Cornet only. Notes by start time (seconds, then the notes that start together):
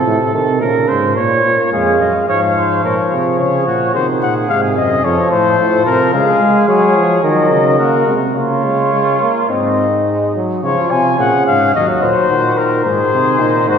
1.73 F5
2.29 F5
2.84 C#5
3.40 C#5
3.94 C5
4.22 F#5
4.49 F5
4.77 D#5
5.04 C#5
5.31 C5
5.86 A#4
6.13 F5
6.69 C#5
7.24 D#5
7.79 A#4
8.35 C#5
9.49 D#5
10.63 C#5
10.91 G#5
11.20 F#5
11.47 F5
11.74 D#5
12.03 C5
12.58 A#4
12.85 C5
13.69 C5